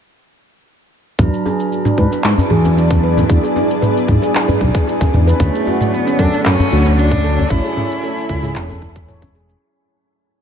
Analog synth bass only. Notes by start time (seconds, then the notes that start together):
1.19 E2
1.98 G#2
2.24 G#2
2.51 E2
3.30 E2
4.09 G#2
4.61 B1
5.14 E2
5.40 D2
6.19 F#2
6.46 F#2
6.72 D2
7.50 A1
8.29 C#2
8.56 E1